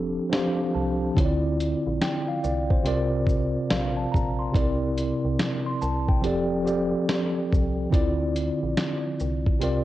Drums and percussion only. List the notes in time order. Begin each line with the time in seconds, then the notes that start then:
0.33 snare, closed hi-hat
1.17 kick, closed hi-hat
1.60 closed hi-hat, shaker
2.01 snare, closed hi-hat
2.44 shaker
2.70 kick
2.86 closed hi-hat
3.27 kick, shaker
3.71 snare, closed hi-hat
4.14 kick, shaker
4.55 kick, closed hi-hat
4.98 closed hi-hat, shaker
5.40 snare, closed hi-hat
5.82 shaker
6.08 kick
6.24 closed hi-hat
6.67 shaker
7.09 snare, closed hi-hat
7.52 kick, shaker
7.93 kick, closed hi-hat
8.36 closed hi-hat, shaker
8.77 snare, closed hi-hat
9.20 shaker
9.46 kick
9.61 closed hi-hat